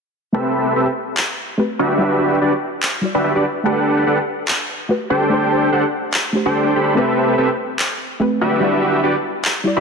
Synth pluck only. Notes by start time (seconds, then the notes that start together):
0.33 A3 C4 G4 B4
1.58 A3 C4 G4 B4
1.98 G3 E4 D5 F#5
3.01 G3 E4 F#4
3.05 D5
3.63 A3 G4 F#5
3.67 B4
4.89 A3 F#4 G4 B4
5.29 A3 D4 G4 C5
6.33 A3 D4 G4 C5
6.95 A3 C4 G4
6.99 B4
8.20 A3 C4 G4 B4
8.60 G3 E4 F#5
8.64 D5
9.64 G3 E4 F#4 D5